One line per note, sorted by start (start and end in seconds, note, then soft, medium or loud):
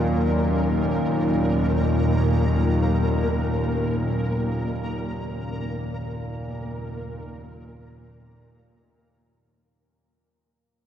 0.00 9.94 D#2 medium
0.00 9.94 A#2 medium
0.00 9.81 F#3 medium
0.00 9.83 A#3 medium
0.00 9.81 C#4 medium
0.00 9.81 D#4 medium
0.00 9.81 A#4 medium
0.00 9.83 A#4 medium